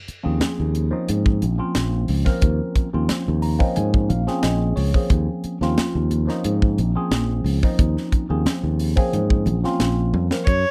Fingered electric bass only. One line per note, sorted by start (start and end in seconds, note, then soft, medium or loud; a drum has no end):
0.08 muted fingered electric bass stroke soft
0.26 0.41 D#2 medium
0.60 0.91 D#2 medium
1.09 1.44 G#2 medium
1.43 1.59 A#1 medium
1.76 2.07 A#1 medium
2.09 2.26 C#2 medium
2.42 2.59 D#2 medium
2.76 muted fingered electric bass stroke soft
2.94 3.09 D#2 medium
3.28 3.59 D#2 medium
3.77 4.12 G#2 medium
4.10 4.27 A#1 medium
4.43 4.75 A#1 medium
4.77 4.94 C#2 medium
5.10 5.27 D#2 medium
5.44 muted fingered electric bass stroke soft
5.61 5.76 D#2 medium
5.95 6.27 D#2 medium
6.45 6.80 G#2 medium
6.79 6.95 A#1 medium
7.11 7.43 A#1 medium
7.44 7.61 C#2 medium
7.79 7.95 D#2 medium
8.13 muted fingered electric bass stroke soft
8.30 8.45 D#2 medium
8.63 8.95 D#2 medium
9.13 9.48 G#2 medium
9.47 9.63 A#1 medium
9.80 10.12 A#1 medium
10.13 10.30 F2 medium
10.47 10.64 F#2 medium